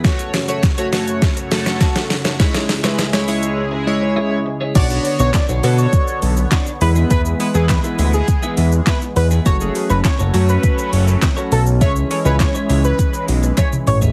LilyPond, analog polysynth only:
\new Staff \with { instrumentName = "Analog polysynth" } { \time 4/4 \key b \dorian \tempo 4 = 102 <a fis' cis''>8 r16 <a fis' cis''>16 r16 <a fis' cis''>16 <a fis' cis''>8 r8 <a fis' a'>4 r8 | <gis e' cis''>8 r16 <gis e' b'>16 r16 <gis e' cis''>16 <gis e' cis''>8 r8 <gis e' cis''>4 r8 | <b d' fis' cis''>16 <b d' fis' cis''>8. r8 <b d' fis' a'>4~ <b d' fis' a'>16 r8. <gis b e' b'>8~ | <gis b e' b'>16 r16 <gis b e' b'>16 <gis b e' b'>4~ <gis b e' b'>16 r2 |
<a cis' fis' cis''>16 <a cis' fis' gis'>8. r8 <a cis' fis' cis''>4~ <a cis' fis' cis''>16 r4 r16 | <gis cis' e' cis''>16 r16 <gis cis' e' cis''>16 <gis cis' e' cis''>4~ <gis cis' e' cis''>16 r2 | }